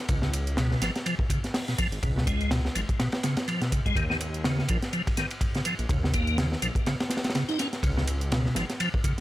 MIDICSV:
0, 0, Header, 1, 4, 480
1, 0, Start_track
1, 0, Tempo, 483871
1, 91, Time_signature, 4, 2, 24, 8
1, 9129, End_track
2, 0, Start_track
2, 0, Title_t, "Tonewheel organ"
2, 0, Program_c, 0, 16
2, 93, Note_on_c, 0, 49, 99
2, 180, Note_off_c, 0, 49, 0
2, 227, Note_on_c, 0, 49, 75
2, 295, Note_off_c, 0, 49, 0
2, 574, Note_on_c, 0, 47, 98
2, 802, Note_off_c, 0, 47, 0
2, 813, Note_on_c, 0, 53, 74
2, 899, Note_off_c, 0, 53, 0
2, 1050, Note_on_c, 0, 53, 99
2, 1138, Note_off_c, 0, 53, 0
2, 1292, Note_on_c, 0, 49, 72
2, 1379, Note_off_c, 0, 49, 0
2, 1669, Note_on_c, 0, 47, 73
2, 1735, Note_off_c, 0, 47, 0
2, 1770, Note_on_c, 0, 53, 75
2, 1858, Note_off_c, 0, 53, 0
2, 2010, Note_on_c, 0, 47, 100
2, 2098, Note_off_c, 0, 47, 0
2, 2146, Note_on_c, 0, 47, 76
2, 2240, Note_off_c, 0, 47, 0
2, 2250, Note_on_c, 0, 56, 80
2, 2480, Note_off_c, 0, 56, 0
2, 2491, Note_on_c, 0, 47, 96
2, 2579, Note_off_c, 0, 47, 0
2, 2732, Note_on_c, 0, 53, 74
2, 2784, Note_off_c, 0, 53, 0
2, 2972, Note_on_c, 0, 47, 100
2, 3059, Note_off_c, 0, 47, 0
2, 3213, Note_on_c, 0, 49, 97
2, 3333, Note_off_c, 0, 49, 0
2, 3451, Note_on_c, 0, 53, 78
2, 3579, Note_off_c, 0, 53, 0
2, 3584, Note_on_c, 0, 47, 74
2, 3685, Note_off_c, 0, 47, 0
2, 3692, Note_on_c, 0, 49, 74
2, 3779, Note_off_c, 0, 49, 0
2, 3828, Note_on_c, 0, 56, 73
2, 3921, Note_off_c, 0, 56, 0
2, 3931, Note_on_c, 0, 51, 99
2, 4019, Note_off_c, 0, 51, 0
2, 4067, Note_on_c, 0, 51, 75
2, 4134, Note_off_c, 0, 51, 0
2, 4411, Note_on_c, 0, 49, 101
2, 4641, Note_off_c, 0, 49, 0
2, 4651, Note_on_c, 0, 53, 74
2, 4739, Note_off_c, 0, 53, 0
2, 4891, Note_on_c, 0, 53, 97
2, 4978, Note_off_c, 0, 53, 0
2, 5133, Note_on_c, 0, 51, 72
2, 5219, Note_off_c, 0, 51, 0
2, 5507, Note_on_c, 0, 49, 76
2, 5575, Note_off_c, 0, 49, 0
2, 5612, Note_on_c, 0, 53, 77
2, 5699, Note_off_c, 0, 53, 0
2, 5851, Note_on_c, 0, 49, 99
2, 5939, Note_off_c, 0, 49, 0
2, 5985, Note_on_c, 0, 49, 75
2, 6080, Note_off_c, 0, 49, 0
2, 6091, Note_on_c, 0, 58, 81
2, 6321, Note_off_c, 0, 58, 0
2, 6330, Note_on_c, 0, 49, 101
2, 6418, Note_off_c, 0, 49, 0
2, 6572, Note_on_c, 0, 53, 75
2, 6624, Note_off_c, 0, 53, 0
2, 6809, Note_on_c, 0, 49, 101
2, 6897, Note_off_c, 0, 49, 0
2, 7290, Note_on_c, 0, 49, 99
2, 7378, Note_off_c, 0, 49, 0
2, 7426, Note_on_c, 0, 63, 102
2, 7525, Note_off_c, 0, 63, 0
2, 7528, Note_on_c, 0, 61, 74
2, 7617, Note_off_c, 0, 61, 0
2, 7768, Note_on_c, 0, 49, 101
2, 7857, Note_off_c, 0, 49, 0
2, 7907, Note_on_c, 0, 49, 76
2, 7974, Note_off_c, 0, 49, 0
2, 8252, Note_on_c, 0, 47, 99
2, 8481, Note_off_c, 0, 47, 0
2, 8494, Note_on_c, 0, 53, 77
2, 8580, Note_off_c, 0, 53, 0
2, 8731, Note_on_c, 0, 53, 100
2, 8819, Note_off_c, 0, 53, 0
2, 8972, Note_on_c, 0, 49, 76
2, 9059, Note_off_c, 0, 49, 0
2, 9129, End_track
3, 0, Start_track
3, 0, Title_t, "Detuned saw bass"
3, 0, Program_c, 1, 39
3, 87, Note_on_c, 1, 37, 97
3, 748, Note_off_c, 1, 37, 0
3, 810, Note_on_c, 1, 32, 96
3, 896, Note_off_c, 1, 32, 0
3, 1906, Note_on_c, 1, 32, 97
3, 1973, Note_off_c, 1, 32, 0
3, 2011, Note_on_c, 1, 37, 96
3, 2670, Note_off_c, 1, 37, 0
3, 2734, Note_on_c, 1, 32, 97
3, 2818, Note_off_c, 1, 32, 0
3, 3924, Note_on_c, 1, 39, 99
3, 4586, Note_off_c, 1, 39, 0
3, 4656, Note_on_c, 1, 34, 100
3, 4739, Note_off_c, 1, 34, 0
3, 5742, Note_on_c, 1, 34, 93
3, 5811, Note_off_c, 1, 34, 0
3, 5845, Note_on_c, 1, 39, 98
3, 6507, Note_off_c, 1, 39, 0
3, 6568, Note_on_c, 1, 34, 97
3, 6655, Note_off_c, 1, 34, 0
3, 7767, Note_on_c, 1, 37, 100
3, 8428, Note_off_c, 1, 37, 0
3, 8490, Note_on_c, 1, 32, 98
3, 8576, Note_off_c, 1, 32, 0
3, 9129, End_track
4, 0, Start_track
4, 0, Title_t, "Drums"
4, 85, Note_on_c, 9, 51, 89
4, 88, Note_on_c, 9, 36, 109
4, 91, Note_on_c, 9, 42, 42
4, 184, Note_off_c, 9, 51, 0
4, 187, Note_off_c, 9, 36, 0
4, 190, Note_off_c, 9, 42, 0
4, 218, Note_on_c, 9, 38, 56
4, 318, Note_off_c, 9, 38, 0
4, 330, Note_on_c, 9, 51, 64
4, 333, Note_on_c, 9, 42, 74
4, 429, Note_off_c, 9, 51, 0
4, 432, Note_off_c, 9, 42, 0
4, 468, Note_on_c, 9, 42, 32
4, 566, Note_on_c, 9, 38, 116
4, 567, Note_off_c, 9, 42, 0
4, 573, Note_on_c, 9, 42, 42
4, 575, Note_on_c, 9, 51, 81
4, 665, Note_off_c, 9, 38, 0
4, 672, Note_off_c, 9, 42, 0
4, 674, Note_off_c, 9, 51, 0
4, 707, Note_on_c, 9, 38, 40
4, 806, Note_off_c, 9, 38, 0
4, 811, Note_on_c, 9, 42, 75
4, 812, Note_on_c, 9, 38, 54
4, 818, Note_on_c, 9, 51, 68
4, 910, Note_off_c, 9, 42, 0
4, 911, Note_off_c, 9, 38, 0
4, 917, Note_off_c, 9, 51, 0
4, 948, Note_on_c, 9, 42, 32
4, 951, Note_on_c, 9, 38, 51
4, 1047, Note_off_c, 9, 42, 0
4, 1051, Note_off_c, 9, 38, 0
4, 1052, Note_on_c, 9, 42, 42
4, 1054, Note_on_c, 9, 51, 81
4, 1151, Note_off_c, 9, 42, 0
4, 1153, Note_off_c, 9, 51, 0
4, 1180, Note_on_c, 9, 36, 94
4, 1279, Note_off_c, 9, 36, 0
4, 1287, Note_on_c, 9, 36, 93
4, 1291, Note_on_c, 9, 42, 76
4, 1294, Note_on_c, 9, 51, 65
4, 1386, Note_off_c, 9, 36, 0
4, 1390, Note_off_c, 9, 42, 0
4, 1393, Note_off_c, 9, 51, 0
4, 1429, Note_on_c, 9, 42, 31
4, 1431, Note_on_c, 9, 38, 41
4, 1528, Note_off_c, 9, 42, 0
4, 1529, Note_off_c, 9, 38, 0
4, 1529, Note_on_c, 9, 38, 116
4, 1532, Note_on_c, 9, 42, 42
4, 1532, Note_on_c, 9, 46, 81
4, 1628, Note_off_c, 9, 38, 0
4, 1631, Note_off_c, 9, 46, 0
4, 1632, Note_off_c, 9, 42, 0
4, 1668, Note_on_c, 9, 42, 30
4, 1671, Note_on_c, 9, 38, 50
4, 1768, Note_off_c, 9, 42, 0
4, 1770, Note_off_c, 9, 38, 0
4, 1771, Note_on_c, 9, 36, 91
4, 1771, Note_on_c, 9, 42, 74
4, 1772, Note_on_c, 9, 51, 68
4, 1870, Note_off_c, 9, 36, 0
4, 1870, Note_off_c, 9, 42, 0
4, 1872, Note_off_c, 9, 51, 0
4, 1908, Note_on_c, 9, 42, 32
4, 2007, Note_off_c, 9, 42, 0
4, 2011, Note_on_c, 9, 36, 113
4, 2013, Note_on_c, 9, 42, 40
4, 2014, Note_on_c, 9, 51, 77
4, 2110, Note_off_c, 9, 36, 0
4, 2112, Note_off_c, 9, 42, 0
4, 2113, Note_off_c, 9, 51, 0
4, 2159, Note_on_c, 9, 38, 60
4, 2251, Note_on_c, 9, 36, 94
4, 2253, Note_on_c, 9, 42, 74
4, 2254, Note_on_c, 9, 51, 66
4, 2258, Note_off_c, 9, 38, 0
4, 2350, Note_off_c, 9, 36, 0
4, 2353, Note_off_c, 9, 42, 0
4, 2354, Note_off_c, 9, 51, 0
4, 2388, Note_on_c, 9, 42, 31
4, 2487, Note_off_c, 9, 42, 0
4, 2489, Note_on_c, 9, 38, 112
4, 2491, Note_on_c, 9, 51, 95
4, 2495, Note_on_c, 9, 42, 40
4, 2588, Note_off_c, 9, 38, 0
4, 2591, Note_off_c, 9, 51, 0
4, 2594, Note_off_c, 9, 42, 0
4, 2628, Note_on_c, 9, 38, 60
4, 2727, Note_off_c, 9, 38, 0
4, 2730, Note_on_c, 9, 51, 70
4, 2734, Note_on_c, 9, 42, 71
4, 2829, Note_off_c, 9, 51, 0
4, 2834, Note_off_c, 9, 42, 0
4, 2867, Note_on_c, 9, 36, 94
4, 2868, Note_on_c, 9, 42, 31
4, 2967, Note_off_c, 9, 36, 0
4, 2967, Note_off_c, 9, 42, 0
4, 2971, Note_on_c, 9, 38, 108
4, 2972, Note_on_c, 9, 51, 85
4, 2973, Note_on_c, 9, 42, 42
4, 3071, Note_off_c, 9, 38, 0
4, 3071, Note_off_c, 9, 51, 0
4, 3072, Note_off_c, 9, 42, 0
4, 3097, Note_on_c, 9, 51, 78
4, 3104, Note_on_c, 9, 38, 106
4, 3196, Note_off_c, 9, 51, 0
4, 3204, Note_off_c, 9, 38, 0
4, 3207, Note_on_c, 9, 51, 81
4, 3212, Note_on_c, 9, 38, 101
4, 3212, Note_on_c, 9, 42, 72
4, 3306, Note_off_c, 9, 51, 0
4, 3311, Note_off_c, 9, 38, 0
4, 3312, Note_off_c, 9, 42, 0
4, 3339, Note_on_c, 9, 51, 73
4, 3346, Note_on_c, 9, 38, 105
4, 3346, Note_on_c, 9, 42, 30
4, 3438, Note_off_c, 9, 51, 0
4, 3445, Note_off_c, 9, 38, 0
4, 3446, Note_off_c, 9, 42, 0
4, 3450, Note_on_c, 9, 42, 41
4, 3457, Note_on_c, 9, 51, 84
4, 3549, Note_off_c, 9, 42, 0
4, 3556, Note_off_c, 9, 51, 0
4, 3587, Note_on_c, 9, 42, 29
4, 3589, Note_on_c, 9, 38, 57
4, 3686, Note_off_c, 9, 42, 0
4, 3688, Note_off_c, 9, 38, 0
4, 3692, Note_on_c, 9, 36, 92
4, 3693, Note_on_c, 9, 42, 74
4, 3694, Note_on_c, 9, 51, 72
4, 3791, Note_off_c, 9, 36, 0
4, 3792, Note_off_c, 9, 42, 0
4, 3793, Note_off_c, 9, 51, 0
4, 3828, Note_on_c, 9, 36, 95
4, 3830, Note_on_c, 9, 42, 32
4, 3925, Note_off_c, 9, 36, 0
4, 3925, Note_on_c, 9, 36, 97
4, 3929, Note_off_c, 9, 42, 0
4, 3932, Note_on_c, 9, 51, 78
4, 3935, Note_on_c, 9, 42, 39
4, 4024, Note_off_c, 9, 36, 0
4, 4031, Note_off_c, 9, 51, 0
4, 4034, Note_off_c, 9, 42, 0
4, 4070, Note_on_c, 9, 38, 51
4, 4169, Note_off_c, 9, 38, 0
4, 4173, Note_on_c, 9, 42, 70
4, 4173, Note_on_c, 9, 51, 64
4, 4272, Note_off_c, 9, 42, 0
4, 4272, Note_off_c, 9, 51, 0
4, 4309, Note_on_c, 9, 42, 29
4, 4408, Note_off_c, 9, 42, 0
4, 4408, Note_on_c, 9, 38, 109
4, 4415, Note_on_c, 9, 42, 41
4, 4416, Note_on_c, 9, 51, 89
4, 4507, Note_off_c, 9, 38, 0
4, 4514, Note_off_c, 9, 42, 0
4, 4515, Note_off_c, 9, 51, 0
4, 4551, Note_on_c, 9, 38, 44
4, 4646, Note_on_c, 9, 51, 82
4, 4650, Note_off_c, 9, 38, 0
4, 4651, Note_on_c, 9, 42, 69
4, 4657, Note_on_c, 9, 36, 99
4, 4745, Note_off_c, 9, 51, 0
4, 4750, Note_off_c, 9, 42, 0
4, 4756, Note_off_c, 9, 36, 0
4, 4786, Note_on_c, 9, 42, 29
4, 4787, Note_on_c, 9, 38, 50
4, 4885, Note_off_c, 9, 42, 0
4, 4886, Note_off_c, 9, 38, 0
4, 4890, Note_on_c, 9, 42, 40
4, 4890, Note_on_c, 9, 51, 59
4, 4989, Note_off_c, 9, 42, 0
4, 4990, Note_off_c, 9, 51, 0
4, 5032, Note_on_c, 9, 36, 92
4, 5032, Note_on_c, 9, 51, 74
4, 5131, Note_off_c, 9, 36, 0
4, 5131, Note_on_c, 9, 42, 74
4, 5132, Note_off_c, 9, 51, 0
4, 5133, Note_on_c, 9, 38, 50
4, 5230, Note_off_c, 9, 42, 0
4, 5233, Note_off_c, 9, 38, 0
4, 5264, Note_on_c, 9, 42, 30
4, 5267, Note_on_c, 9, 51, 65
4, 5363, Note_off_c, 9, 42, 0
4, 5365, Note_on_c, 9, 36, 104
4, 5366, Note_off_c, 9, 51, 0
4, 5367, Note_on_c, 9, 51, 84
4, 5368, Note_on_c, 9, 42, 40
4, 5464, Note_off_c, 9, 36, 0
4, 5467, Note_off_c, 9, 42, 0
4, 5467, Note_off_c, 9, 51, 0
4, 5502, Note_on_c, 9, 42, 28
4, 5510, Note_on_c, 9, 38, 53
4, 5601, Note_off_c, 9, 42, 0
4, 5603, Note_on_c, 9, 51, 65
4, 5606, Note_on_c, 9, 42, 73
4, 5610, Note_off_c, 9, 38, 0
4, 5702, Note_off_c, 9, 51, 0
4, 5705, Note_off_c, 9, 42, 0
4, 5744, Note_on_c, 9, 42, 29
4, 5843, Note_off_c, 9, 42, 0
4, 5846, Note_on_c, 9, 36, 109
4, 5849, Note_on_c, 9, 42, 40
4, 5856, Note_on_c, 9, 51, 78
4, 5945, Note_off_c, 9, 36, 0
4, 5948, Note_off_c, 9, 42, 0
4, 5955, Note_off_c, 9, 51, 0
4, 5994, Note_on_c, 9, 38, 55
4, 6087, Note_on_c, 9, 42, 69
4, 6089, Note_on_c, 9, 51, 64
4, 6091, Note_on_c, 9, 36, 86
4, 6093, Note_off_c, 9, 38, 0
4, 6187, Note_off_c, 9, 42, 0
4, 6188, Note_off_c, 9, 51, 0
4, 6191, Note_off_c, 9, 36, 0
4, 6223, Note_on_c, 9, 42, 31
4, 6323, Note_off_c, 9, 42, 0
4, 6330, Note_on_c, 9, 38, 108
4, 6330, Note_on_c, 9, 42, 40
4, 6333, Note_on_c, 9, 51, 85
4, 6429, Note_off_c, 9, 38, 0
4, 6429, Note_off_c, 9, 42, 0
4, 6432, Note_off_c, 9, 51, 0
4, 6469, Note_on_c, 9, 38, 53
4, 6568, Note_off_c, 9, 38, 0
4, 6568, Note_on_c, 9, 51, 64
4, 6570, Note_on_c, 9, 42, 71
4, 6668, Note_off_c, 9, 51, 0
4, 6669, Note_off_c, 9, 42, 0
4, 6698, Note_on_c, 9, 36, 98
4, 6705, Note_on_c, 9, 42, 30
4, 6797, Note_off_c, 9, 36, 0
4, 6804, Note_off_c, 9, 42, 0
4, 6809, Note_on_c, 9, 42, 40
4, 6814, Note_on_c, 9, 38, 108
4, 6815, Note_on_c, 9, 51, 80
4, 6909, Note_off_c, 9, 42, 0
4, 6913, Note_off_c, 9, 38, 0
4, 6914, Note_off_c, 9, 51, 0
4, 6947, Note_on_c, 9, 51, 76
4, 6949, Note_on_c, 9, 38, 96
4, 7040, Note_off_c, 9, 38, 0
4, 7040, Note_on_c, 9, 38, 89
4, 7046, Note_off_c, 9, 51, 0
4, 7049, Note_on_c, 9, 42, 73
4, 7052, Note_on_c, 9, 51, 69
4, 7114, Note_off_c, 9, 38, 0
4, 7114, Note_on_c, 9, 38, 82
4, 7117, Note_off_c, 9, 51, 0
4, 7117, Note_on_c, 9, 51, 62
4, 7148, Note_off_c, 9, 42, 0
4, 7186, Note_on_c, 9, 42, 30
4, 7188, Note_off_c, 9, 38, 0
4, 7188, Note_on_c, 9, 38, 85
4, 7189, Note_off_c, 9, 51, 0
4, 7189, Note_on_c, 9, 51, 73
4, 7238, Note_off_c, 9, 38, 0
4, 7238, Note_on_c, 9, 38, 92
4, 7243, Note_off_c, 9, 51, 0
4, 7243, Note_on_c, 9, 51, 64
4, 7285, Note_off_c, 9, 42, 0
4, 7291, Note_on_c, 9, 42, 40
4, 7293, Note_off_c, 9, 51, 0
4, 7293, Note_on_c, 9, 51, 86
4, 7294, Note_off_c, 9, 38, 0
4, 7294, Note_on_c, 9, 38, 116
4, 7390, Note_off_c, 9, 42, 0
4, 7393, Note_off_c, 9, 38, 0
4, 7393, Note_off_c, 9, 51, 0
4, 7428, Note_on_c, 9, 42, 27
4, 7434, Note_on_c, 9, 38, 35
4, 7527, Note_off_c, 9, 42, 0
4, 7532, Note_on_c, 9, 42, 68
4, 7533, Note_off_c, 9, 38, 0
4, 7534, Note_on_c, 9, 38, 47
4, 7534, Note_on_c, 9, 51, 57
4, 7631, Note_off_c, 9, 42, 0
4, 7633, Note_off_c, 9, 38, 0
4, 7633, Note_off_c, 9, 51, 0
4, 7667, Note_on_c, 9, 38, 41
4, 7667, Note_on_c, 9, 42, 29
4, 7766, Note_off_c, 9, 38, 0
4, 7766, Note_off_c, 9, 42, 0
4, 7767, Note_on_c, 9, 36, 115
4, 7772, Note_on_c, 9, 42, 40
4, 7774, Note_on_c, 9, 51, 92
4, 7866, Note_off_c, 9, 36, 0
4, 7871, Note_off_c, 9, 42, 0
4, 7873, Note_off_c, 9, 51, 0
4, 7911, Note_on_c, 9, 38, 60
4, 8010, Note_off_c, 9, 38, 0
4, 8011, Note_on_c, 9, 42, 71
4, 8012, Note_on_c, 9, 51, 67
4, 8110, Note_off_c, 9, 42, 0
4, 8111, Note_off_c, 9, 51, 0
4, 8147, Note_on_c, 9, 42, 31
4, 8247, Note_off_c, 9, 42, 0
4, 8252, Note_on_c, 9, 42, 41
4, 8252, Note_on_c, 9, 51, 86
4, 8257, Note_on_c, 9, 38, 117
4, 8351, Note_off_c, 9, 42, 0
4, 8352, Note_off_c, 9, 51, 0
4, 8356, Note_off_c, 9, 38, 0
4, 8387, Note_on_c, 9, 38, 42
4, 8483, Note_off_c, 9, 38, 0
4, 8483, Note_on_c, 9, 38, 55
4, 8493, Note_on_c, 9, 42, 75
4, 8495, Note_on_c, 9, 51, 62
4, 8582, Note_off_c, 9, 38, 0
4, 8592, Note_off_c, 9, 42, 0
4, 8595, Note_off_c, 9, 51, 0
4, 8627, Note_on_c, 9, 38, 47
4, 8627, Note_on_c, 9, 42, 31
4, 8726, Note_off_c, 9, 38, 0
4, 8726, Note_off_c, 9, 42, 0
4, 8730, Note_on_c, 9, 42, 41
4, 8731, Note_on_c, 9, 51, 93
4, 8829, Note_off_c, 9, 42, 0
4, 8831, Note_off_c, 9, 51, 0
4, 8868, Note_on_c, 9, 36, 97
4, 8967, Note_off_c, 9, 36, 0
4, 8968, Note_on_c, 9, 36, 100
4, 8969, Note_on_c, 9, 42, 75
4, 8970, Note_on_c, 9, 51, 64
4, 9067, Note_off_c, 9, 36, 0
4, 9069, Note_off_c, 9, 42, 0
4, 9069, Note_off_c, 9, 51, 0
4, 9129, End_track
0, 0, End_of_file